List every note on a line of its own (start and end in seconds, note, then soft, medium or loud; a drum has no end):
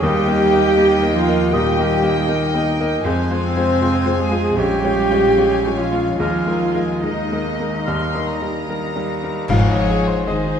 0.01 3.01 D#2 medium
0.01 0.27 D#2 medium
0.01 1.10 D#3 medium
0.01 1.12 G3 loud
0.01 1.34 A#3 medium
0.01 0.29 A#3 medium
0.01 1.34 D#4 medium
0.01 1.14 G4 loud
0.01 1.17 G4 medium
0.01 0.29 D#5 medium
0.01 1.49 D#5 medium
0.01 1.49 G5 medium
0.01 1.13 G5 medium
0.28 0.49 A#3 medium
0.28 0.50 A#4 medium
0.28 0.50 D#5 medium
0.53 0.75 A#3 medium
0.53 0.75 A#4 medium
0.53 0.75 D#5 medium
0.77 0.99 A#3 medium
0.77 0.99 A#4 medium
0.77 1.00 D#5 medium
1.02 1.25 A#3 medium
1.02 1.25 A#4 medium
1.02 1.25 D#5 medium
1.14 1.52 F3 medium
1.14 1.51 F4 medium
1.14 1.52 F4 medium
1.14 1.54 F5 medium
1.28 1.50 A#3 medium
1.28 1.51 A#4 medium
1.28 1.51 D#5 medium
1.51 1.77 A#2 medium
1.51 2.66 G3 medium
1.51 3.01 A#3 medium
1.51 1.79 A#3 medium
1.51 3.01 D#4 medium
1.51 2.66 G4 medium
1.51 2.65 G4 medium
1.51 1.80 D#5 medium
1.51 3.02 D#5 medium
1.51 3.02 G5 medium
1.51 2.67 G5 medium
1.51 3.03 G5 medium
1.78 2.01 A#3 medium
1.78 2.01 A#4 medium
1.78 2.01 D#5 medium
2.03 2.26 A#3 medium
2.03 2.26 A#4 medium
2.03 2.26 D#5 medium
2.28 2.51 A#3 medium
2.28 2.51 A#4 medium
2.28 2.51 D#5 medium
2.55 2.77 A#3 medium
2.55 2.77 A#4 medium
2.55 2.78 D#5 medium
2.80 3.03 A#3 medium
2.80 3.03 A#4 medium
2.80 3.03 D#5 medium
3.04 3.29 F2 medium
3.04 4.55 F2 medium
3.04 4.56 G#3 medium
3.04 3.33 G#3 medium
3.04 4.54 C4 medium
3.04 3.33 C5 medium
3.04 4.59 C5 medium
3.04 4.55 F5 medium
3.04 4.54 G#5 medium
3.31 3.53 G#3 medium
3.31 3.53 F4 medium
3.31 3.54 C5 medium
3.43 4.15 C3 medium
3.43 4.15 C4 medium
3.43 4.21 C4 medium
3.43 4.22 C5 medium
3.57 3.79 G#3 medium
3.57 3.79 F4 medium
3.57 3.79 C5 medium
3.82 4.04 G#3 soft
3.82 4.04 F4 medium
3.82 4.04 C5 medium
4.06 4.29 G#3 medium
4.06 4.29 F4 medium
4.06 4.29 C5 medium
4.20 4.58 G#3 medium
4.20 4.57 G#4 medium
4.20 4.58 G#4 medium
4.20 4.60 G#5 medium
4.31 4.55 G#3 medium
4.31 4.55 F4 medium
4.31 4.55 C5 medium
4.56 4.82 A#1 medium
4.56 6.20 A#1 medium
4.56 5.78 G3 medium
4.56 6.16 G#3 medium
4.56 4.87 G#3 medium
4.56 6.19 C#4 medium
4.56 5.75 G4 medium
4.56 5.78 G4 loud
4.56 4.86 C#5 medium
4.56 6.20 C#5 medium
4.56 6.17 F5 medium
4.56 5.80 G5 medium
4.56 6.16 G#5 medium
4.84 5.08 G#3 medium
4.84 5.08 F4 medium
4.84 5.08 C#5 medium
5.11 5.34 G#3 medium
5.11 5.35 F4 soft
5.11 5.35 C#5 medium
5.38 5.62 G#3 soft
5.38 5.62 F4 medium
5.38 5.62 C#5 medium
5.65 5.89 G#3 soft
5.65 5.90 F4 soft
5.65 5.90 C#5 medium
5.78 6.19 F3 medium
5.78 6.18 F4 medium
5.78 6.20 F5 medium
5.93 6.17 G#3 soft
5.93 6.17 F4 soft
5.93 6.17 C#5 medium
6.19 9.24 D#2 medium
6.19 6.47 D#2 medium
6.19 7.02 F3 medium
6.19 6.50 G#3 medium
6.19 7.01 G#3 medium
6.19 7.02 A#3 medium
6.19 7.05 F4 medium
6.19 7.01 F4 medium
6.19 7.01 A#4 medium
6.19 6.51 A#4 medium
6.19 7.01 D#5 medium
6.19 7.05 F5 medium
6.19 7.02 G#5 medium
6.47 6.72 G#3 soft
6.47 6.72 D#4 soft
6.47 6.72 A#4 medium
6.74 7.00 G#3 soft
6.74 7.00 D#4 soft
6.74 7.00 A#4 medium
7.03 9.09 D#3 medium
7.03 7.29 G#3 soft
7.03 7.85 G#3 medium
7.03 7.85 A#3 medium
7.03 9.09 D#4 medium
7.03 7.29 D#4 soft
7.03 7.85 A#4 medium
7.03 7.29 A#4 medium
7.03 9.09 D#5 medium
7.03 7.85 D#5 medium
7.03 7.83 D#5 medium
7.32 7.57 G#3 soft
7.32 7.57 D#4 soft
7.32 7.57 A#4 medium
7.60 7.84 G#3 soft
7.60 7.84 D#4 soft
7.60 7.85 A#4 soft
7.86 8.14 D#2 medium
7.86 8.17 G3 medium
7.86 9.15 G3 medium
7.86 9.12 A#3 medium
7.86 8.16 A#4 medium
7.86 9.25 A#4 medium
7.86 9.25 D#5 medium
7.86 8.28 C6 medium
8.15 8.39 G3 soft
8.15 8.39 D#4 soft
8.15 8.39 A#4 soft
8.28 9.49 A#5 medium
8.42 8.66 G3 soft
8.42 8.66 D#4 soft
8.42 8.66 A#4 soft
8.69 8.93 G3 soft
8.69 8.93 D#4 soft
8.69 8.94 A#4 medium
8.96 9.20 G3 soft
8.96 9.20 D#4 soft
8.96 9.21 A#4 soft
9.24 9.47 G3 soft
9.24 9.47 D#4 soft
9.24 9.47 A#4 soft
9.49 10.11 G#1 medium
9.49 10.60 G#2 loud
9.49 10.60 G#2 medium
9.49 10.23 F3 medium
9.49 10.24 F4 medium
9.49 10.23 G#4 medium
9.49 10.23 C#5 medium
9.49 10.23 F5 medium
9.49 concert bass drum medium
9.49 crash medium
9.69 10.00 D#4 medium
9.89 10.20 G#4 medium
10.07 10.38 C5 medium
10.27 10.60 D#3 medium
10.27 10.60 G#3 medium
10.27 10.60 C4 medium
10.27 10.45 D#4 medium
10.27 10.59 G#4 medium
10.27 10.60 G#4 medium
10.27 10.60 C5 medium
10.27 10.60 D#5 medium
10.47 10.60 D#4 medium